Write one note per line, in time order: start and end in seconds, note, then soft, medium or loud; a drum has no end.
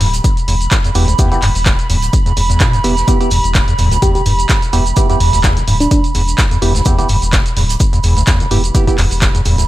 0.00 0.20 D1 loud
0.00 0.08 G2 medium
0.00 9.68 B5 medium
0.00 snare soft
0.00 open hi-hat loud
0.00 shaker medium
0.13 closed hi-hat soft
0.13 shaker medium
0.24 kick loud
0.24 closed hi-hat medium
0.24 shaker medium
0.37 closed hi-hat soft
0.37 shaker soft
0.48 0.68 E1 loud
0.48 0.55 E2 medium
0.48 open hi-hat loud
0.48 shaker medium
0.61 closed hi-hat soft
0.61 shaker medium
0.71 kick loud
0.71 snare loud
0.71 clap loud
0.71 closed hi-hat loud
0.71 shaker medium
0.84 0.90 E2 medium
0.84 closed hi-hat soft
0.84 shaker soft
0.95 1.15 E1 medium
0.95 1.06 E2 loud
0.95 1.06 B3 medium
0.95 1.06 E4 medium
0.95 1.06 G4 loud
0.95 open hi-hat loud
0.95 shaker medium
1.08 1.14 D2 medium
1.08 closed hi-hat soft
1.08 shaker medium
1.19 1.33 E2 medium
1.19 1.30 B3 medium
1.19 1.30 E4 medium
1.19 1.30 G4 medium
1.19 kick loud
1.19 closed hi-hat medium
1.19 shaker medium
1.31 1.37 E1 medium
1.31 1.41 B3 loud
1.31 1.41 E4 medium
1.31 1.41 G4 loud
1.31 closed hi-hat soft
1.31 shaker soft
1.42 1.53 E1 loud
1.42 1.49 G2 medium
1.42 clap medium
1.42 open hi-hat loud
1.42 shaker medium
1.55 1.74 E1 loud
1.55 open hi-hat medium
1.55 shaker medium
1.66 kick loud
1.66 snare loud
1.66 clap loud
1.66 closed hi-hat medium
1.66 shaker medium
1.79 closed hi-hat soft
1.79 shaker soft
1.90 2.09 D1 loud
1.90 1.97 E2 medium
1.90 open hi-hat loud
1.90 shaker medium
2.02 closed hi-hat soft
2.02 shaker medium
2.13 kick loud
2.13 closed hi-hat medium
2.13 shaker medium
2.26 2.32 E2 medium
2.26 closed hi-hat soft
2.26 shaker soft
2.37 2.57 E1 loud
2.37 2.41 E2 medium
2.37 open hi-hat loud
2.37 shaker medium
2.50 2.62 E2 medium
2.50 closed hi-hat soft
2.50 shaker medium
2.60 2.75 B2 medium
2.60 kick loud
2.60 snare loud
2.60 clap loud
2.60 closed hi-hat medium
2.60 shaker medium
2.73 2.79 F#2 loud
2.73 closed hi-hat soft
2.73 shaker soft
2.84 3.04 E1 medium
2.84 2.91 E1 medium
2.84 2.95 B3 loud
2.84 2.95 E4 medium
2.84 2.95 G4 loud
2.84 open hi-hat loud
2.84 shaker medium
2.97 snare soft
2.97 closed hi-hat soft
2.97 shaker medium
3.08 3.19 B3 medium
3.08 3.19 E4 medium
3.08 3.19 G4 medium
3.08 kick loud
3.08 closed hi-hat medium
3.08 shaker medium
3.20 3.30 B3 loud
3.20 3.30 E4 medium
3.20 3.30 G4 loud
3.20 closed hi-hat soft
3.20 shaker soft
3.31 3.42 E1 loud
3.31 3.38 E2 medium
3.31 open hi-hat loud
3.31 shaker medium
3.44 3.63 E1 loud
3.44 closed hi-hat soft
3.44 shaker medium
3.54 kick loud
3.54 snare loud
3.54 clap loud
3.54 closed hi-hat medium
3.54 shaker medium
3.68 3.74 E2 loud
3.68 closed hi-hat soft
3.68 shaker soft
3.78 3.98 D1 loud
3.78 3.89 E2 loud
3.78 snare soft
3.78 open hi-hat loud
3.78 shaker medium
3.91 3.97 D2 medium
3.91 closed hi-hat soft
3.91 shaker medium
4.02 4.16 E2 medium
4.02 4.10 G4 medium
4.02 kick loud
4.02 closed hi-hat medium
4.02 shaker medium
4.15 4.21 E1 medium
4.15 4.22 G4 medium
4.15 closed hi-hat soft
4.15 shaker soft
4.26 4.46 E1 loud
4.26 4.33 G2 medium
4.26 open hi-hat loud
4.26 shaker medium
4.39 closed hi-hat soft
4.39 shaker medium
4.49 kick loud
4.49 snare loud
4.49 clap loud
4.49 closed hi-hat medium
4.49 shaker medium
4.62 closed hi-hat soft
4.62 shaker soft
4.73 4.93 E1 medium
4.73 4.80 E2 medium
4.73 4.84 B3 medium
4.73 4.84 E4 medium
4.73 4.84 G4 loud
4.73 open hi-hat loud
4.73 shaker medium
4.86 closed hi-hat soft
4.86 shaker medium
4.96 5.08 B3 medium
4.96 5.08 E4 medium
4.96 5.08 G4 loud
4.96 kick loud
4.96 closed hi-hat loud
4.96 shaker medium
5.09 5.15 E2 loud
5.09 5.19 B3 loud
5.09 5.19 E4 medium
5.09 5.19 G4 loud
5.09 closed hi-hat soft
5.09 shaker soft
5.20 5.31 E1 loud
5.20 5.31 E2 loud
5.20 open hi-hat loud
5.20 shaker medium
5.33 5.52 E1 loud
5.33 5.39 D2 medium
5.33 open hi-hat medium
5.33 shaker medium
5.44 5.58 E2 medium
5.44 kick loud
5.44 snare loud
5.44 clap loud
5.44 closed hi-hat medium
5.44 shaker medium
5.57 5.63 E1 medium
5.57 closed hi-hat soft
5.57 shaker soft
5.68 5.87 D1 loud
5.68 5.75 G2 medium
5.68 open hi-hat loud
5.68 shaker medium
5.80 5.87 D4 medium
5.80 closed hi-hat soft
5.80 shaker medium
5.91 5.99 D4 medium
5.91 kick loud
5.91 closed hi-hat loud
5.91 shaker medium
6.04 closed hi-hat soft
6.04 shaker soft
6.15 6.35 E1 loud
6.15 6.22 E2 medium
6.15 open hi-hat loud
6.15 shaker medium
6.28 closed hi-hat soft
6.28 shaker medium
6.38 kick loud
6.38 snare loud
6.38 clap loud
6.38 closed hi-hat loud
6.38 shaker medium
6.51 6.57 E2 loud
6.51 closed hi-hat soft
6.51 shaker soft
6.62 6.82 E1 medium
6.62 6.73 E2 loud
6.62 6.73 B3 loud
6.62 6.73 E4 medium
6.62 6.73 G4 loud
6.62 open hi-hat loud
6.62 shaker medium
6.75 6.81 D2 medium
6.75 snare soft
6.75 closed hi-hat soft
6.75 shaker medium
6.85 7.00 E2 medium
6.85 6.97 B3 medium
6.85 6.97 E4 medium
6.85 6.97 G4 medium
6.85 kick loud
6.85 closed hi-hat loud
6.85 shaker loud
6.85 shaker medium
6.98 7.04 E1 medium
6.98 7.08 B3 loud
6.98 7.08 E4 medium
6.98 7.08 G4 loud
6.98 closed hi-hat soft
6.98 shaker soft
7.09 7.20 E1 loud
7.09 7.16 G2 medium
7.09 open hi-hat loud
7.09 shaker medium
7.22 7.41 E1 loud
7.22 closed hi-hat soft
7.22 shaker medium
7.33 kick loud
7.33 snare loud
7.33 clap loud
7.33 closed hi-hat loud
7.33 shaker medium
7.46 closed hi-hat soft
7.46 shaker soft
7.56 7.76 D1 loud
7.56 7.64 E2 medium
7.56 snare soft
7.56 open hi-hat loud
7.56 shaker medium
7.69 closed hi-hat soft
7.69 shaker medium
7.80 kick loud
7.80 closed hi-hat loud
7.80 shaker medium
7.93 7.99 E2 loud
7.93 closed hi-hat soft
7.93 shaker soft
8.03 8.24 E1 loud
8.03 8.14 E2 loud
8.03 open hi-hat loud
8.03 shaker medium
8.17 8.23 D2 medium
8.17 closed hi-hat soft
8.17 shaker medium
8.27 8.42 E2 medium
8.27 kick loud
8.27 snare loud
8.27 clap loud
8.27 closed hi-hat loud
8.27 shaker medium
8.40 8.46 E1 medium
8.40 closed hi-hat soft
8.40 shaker soft
8.51 8.71 E1 medium
8.51 8.58 G2 medium
8.51 8.62 B3 medium
8.51 8.62 E4 medium
8.51 8.62 G4 loud
8.51 open hi-hat loud
8.51 shaker medium
8.64 closed hi-hat soft
8.64 shaker medium
8.75 8.86 B3 medium
8.75 8.86 E4 medium
8.75 8.86 G4 loud
8.75 kick loud
8.75 closed hi-hat loud
8.75 shaker medium
8.87 8.97 B3 loud
8.87 8.97 E4 medium
8.87 8.97 G4 loud
8.87 kick medium
8.87 closed hi-hat soft
8.87 shaker soft
8.98 9.09 E1 loud
8.98 9.05 E2 medium
8.98 clap medium
8.98 open hi-hat loud
8.98 shaker medium
9.11 9.30 E1 loud
9.11 open hi-hat medium
9.11 shaker medium
9.22 kick loud
9.22 snare loud
9.22 clap loud
9.22 closed hi-hat loud
9.22 shaker medium
9.35 9.41 E2 loud
9.35 closed hi-hat soft
9.35 shaker soft
9.45 9.65 D1 loud
9.45 9.56 E2 loud
9.45 open hi-hat loud
9.45 shaker medium
9.58 9.64 D2 medium
9.58 closed hi-hat soft
9.58 shaker medium